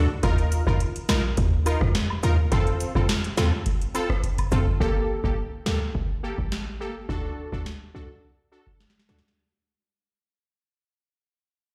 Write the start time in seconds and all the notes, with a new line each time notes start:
0.23 D#2 D#4 F4 A#4, kick, closed hi-hat, high woodblock
0.38 closed hi-hat
0.52 closed hi-hat, cabasa
0.67 F2 D#4 F4 A#4, kick, high woodblock
0.80 closed hi-hat
0.96 closed hi-hat
1.09 A#1 D#4 F4 A#4, snare, closed hi-hat, cabasa, high woodblock
1.37 D#2, kick, closed hi-hat
1.66 D#4 F4 A#4, closed hi-hat, cabasa, high woodblock
1.81 F2, kick, cross-stick
1.95 snare, closed hi-hat
2.10 high woodblock
2.23 D#2 D#4 F4 A#4, closed hi-hat, cabasa
2.51 F2 C4 F4 A4, kick, closed hi-hat, high woodblock
2.67 closed hi-hat
2.80 closed hi-hat, cabasa
2.95 F2 C4 F4 A4, kick, high woodblock
3.09 snare, closed hi-hat
3.24 closed hi-hat
3.37 D#2 C4 F4 A4, snare, closed hi-hat, cabasa, high woodblock
3.66 kick, closed hi-hat
3.82 closed hi-hat
3.94 C4 F4 A4, closed hi-hat, cabasa, high woodblock
4.10 kick, cross-stick
4.23 kick, closed hi-hat
4.38 kick, closed hi-hat, high woodblock
4.52 F2 C4 F4 A4, kick, closed hi-hat, cabasa
4.67 kick
4.80 G1 A#3 G4 A4, kick
5.24 A#1 A#3 G4 A4, kick
5.66 D2 A#3 G4 A4, snare
5.95 G1, kick
6.23 A#3 G4 A4
6.38 A1, kick
6.52 snare
6.80 G1 A#3 G4 A4
7.09 D2 D4 F#4 A4, kick
7.52 D2 D4 F#4 A4, kick
7.66 snare
7.94 C2 D4 F#4 A4
8.52 D4 F#4 A4
8.67 kick
8.80 snare
8.90 snare
8.99 snare
9.09 D2 D4 F#4 A4, snare
9.19 snare
9.28 snare